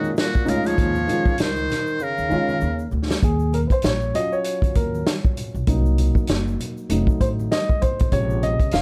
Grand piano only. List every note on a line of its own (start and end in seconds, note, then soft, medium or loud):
0.45 0.91 G#3 medium
0.45 0.92 C#4 medium
0.45 0.91 D#4 medium
0.45 0.93 F4 medium
1.07 1.30 D#3 medium
1.07 1.31 G#3 medium
1.07 1.31 C#4 medium
1.07 1.32 F4 medium
2.29 2.53 D#3 medium
2.29 2.53 G#3 medium
2.29 2.54 C#4 medium
2.29 2.54 F4 medium
3.24 3.52 G#4 medium
3.54 3.59 A#4 medium
3.67 3.71 B4 medium
3.72 3.85 C5 medium
3.85 4.16 C#5 medium
4.14 5.63 F#3 medium
4.14 5.64 C#4 soft
4.14 5.64 F4 medium
4.14 4.33 D#5 loud
4.32 4.73 C#5 medium
4.76 5.04 A#4 medium
5.67 6.86 F#3 soft
5.67 6.86 A#3 soft
5.67 6.87 D#4 medium
6.90 8.08 F#3 medium
6.90 8.09 A3 soft
6.90 8.09 D#4 medium
7.21 7.28 C5 medium
7.52 7.80 D#5 loud
7.82 8.10 C5 medium
8.12 8.82 C3 medium
8.12 8.82 C#3 medium
8.12 8.82 G#3 soft
8.12 8.44 C#5 medium
8.43 8.75 D#5 medium
8.73 8.82 F5 loud